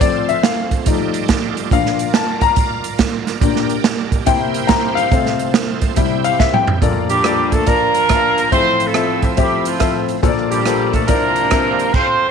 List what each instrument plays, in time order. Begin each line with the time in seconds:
0.01 grand piano F3 A3 C4 D5, tonewheel organ C4 F4 A4, kick, closed hi-hat
0.29 grand piano E5, closed hi-hat
0.43 grand piano F5, snare, closed hi-hat
0.71 kick, closed hi-hat
0.86 grand piano F3 A3 D#4, tonewheel organ G3 D#4 D5, kick, closed hi-hat
1.14 closed hi-hat
1.28 kick, snare, closed hi-hat
1.57 closed hi-hat
1.71 grand piano A#2 F3 D4 F5, tonewheel organ A#4, kick, closed hi-hat
1.86 snare
1.99 closed hi-hat
2.14 grand piano A5, snare, closed hi-hat
2.41 grand piano A#5, kick, closed hi-hat
2.56 kick, closed hi-hat
2.84 closed hi-hat
2.99 kick, snare, closed hi-hat
3.27 snare, closed hi-hat
3.40 tonewheel organ A#2 G4 A#4, grand piano A#2 A#3 D4, kick, closed hi-hat
3.56 snare
3.70 closed hi-hat
3.84 snare, closed hi-hat
4.12 kick, closed hi-hat
4.26 grand piano C3 A#3 E4 G5, tonewheel organ A#3 C4 E4 C5, kick, closed hi-hat
4.54 closed hi-hat
4.67 grand piano A#5, kick, snare, closed hi-hat
4.95 grand piano F5, closed hi-hat
5.11 grand piano C3 A3 C4, tonewheel organ F4 A4, kick, closed hi-hat
5.26 snare
5.39 closed hi-hat
5.54 snare, closed hi-hat
5.81 kick, closed hi-hat
5.96 grand piano C3 G3 E4, tonewheel organ E4 G4, kick, closed hi-hat
6.24 grand piano F5, closed hi-hat
6.39 grand piano E5, kick, snare
6.54 grand piano G5, mid tom
6.68 floor tom
6.82 grand piano A#1 A#2 A#3 F4 A4 D5, tonewheel organ F3 A#3 D4, kick, closed hi-hat
7.09 horn section G3 D4 G4, closed hi-hat
7.24 grand piano A#3 F4 A4 D5, cross-stick, closed hi-hat
7.52 horn section A3 A4, kick, closed hi-hat
7.66 grand piano A#3 F4 D5 A5, horn section A#3 D4 F4 A#4, kick, closed hi-hat
7.94 closed hi-hat
8.09 grand piano A#3 F4 E5 A5, kick, cross-stick, closed hi-hat
8.15 grand piano F5
8.37 cross-stick, closed hi-hat
8.51 grand piano A1 A2 F3 C4 G#4 E5, tonewheel organ A2 C4 E5, horn section C4 E4 F4 C5, kick, closed hi-hat
8.57 grand piano A4
8.80 closed hi-hat
8.87 horn section A3 C4 E4 A4
8.94 grand piano F3 C4 A4 E5, cross-stick, closed hi-hat
9.22 horn section F3 F4, kick, closed hi-hat
9.37 grand piano F3 C4 G4 E5, horn section G3 C4 E4 G4, kick, closed hi-hat
9.43 grand piano A4
9.65 horn section F3 C4 F4, closed hi-hat
9.79 grand piano F3 C4 A4 E5, kick, cross-stick, closed hi-hat
10.08 closed hi-hat
10.22 grand piano A#1 A#2 A#3 F4 A4 C5, tonewheel organ F3 A#3 D4 A4, kick, closed hi-hat
10.28 grand piano D5
10.38 cross-stick
10.50 horn section G3 D4 G4, closed hi-hat
10.66 grand piano A#3 F4 A4 C5, cross-stick, closed hi-hat
10.93 horn section A3 A4, kick, closed hi-hat
11.08 grand piano C2 C3 C4 F4 A#4 D5, tonewheel organ F3 C4 G4, horn section A#3 D4 F4 A#4, kick, closed hi-hat
11.36 closed hi-hat
11.51 grand piano C4 F4 A#4 E5, kick, cross-stick, closed hi-hat
11.79 closed hi-hat
11.94 horn section C4 F4 A4 C5, kick, crash